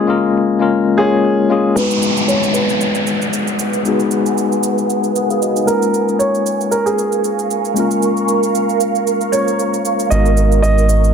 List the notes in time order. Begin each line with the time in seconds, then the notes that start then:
Already playing: G#3 A#3 C#4 F4 G#4 A#4
0.07 G#3 A#3 C#4 F4 A#4
0.59 G#3 A#3 C#4 F4 A#4
0.97 G#3 A#3 C#4 F4 G#4 C#5
1.49 G#3 A#3 C#4 F4 G#4
1.74 G#3 B3 B4 F#5 G#5 D#6, downlifter, shaker
1.78 F#4 B4
1.91 shaker
2.02 shaker
2.17 shaker
2.28 C#5, shaker
2.43 shaker
2.54 B4, shaker
2.69 shaker
2.81 shaker
2.95 shaker
3.07 shaker
3.22 shaker
3.33 shaker
3.47 shaker
3.59 shaker
3.73 shaker
3.83 G#3 B3 D#4, shaker
3.87 F#4 G#4
4.00 shaker
4.11 shaker
4.26 shaker
4.38 shaker
4.52 shaker
4.63 shaker
4.78 shaker
4.90 shaker
5.04 shaker
5.16 A#4 F#5, shaker
5.30 G#4 F5, shaker
5.42 F#4 D#5, shaker
5.56 D#4 B4, shaker
5.65 G#3 A#3 C#4 A#4 F5 C#6, shaker
5.70 F4 A#4
5.82 shaker
5.94 shaker
6.08 shaker
6.19 C#5, shaker
6.35 shaker
6.46 shaker
6.61 shaker
6.71 A#4, shaker
6.86 G#4, shaker
6.98 shaker
7.12 shaker
7.24 shaker
7.39 shaker
7.51 shaker
7.65 shaker
7.74 G#3 A#3 C#4 A#5, shaker
7.78 F4 A#4
7.91 shaker
8.02 shaker
8.17 shaker
8.28 shaker
8.43 shaker
8.55 shaker
8.69 shaker
8.80 shaker
8.95 shaker
9.07 shaker
9.21 shaker
9.32 G#3 A#3 C#4 F4 C5 C#5, shaker
9.41 C#5
9.48 shaker
9.59 shaker
9.74 shaker
9.85 shaker
9.99 shaker
10.09 G#1 G#3 B3 D#4 D#5 F#5 G#5 D#6, shaker
10.13 F#4 A#4
10.26 shaker
10.37 shaker
10.52 shaker
10.62 D#5, shaker
10.78 shaker
10.89 shaker
11.04 shaker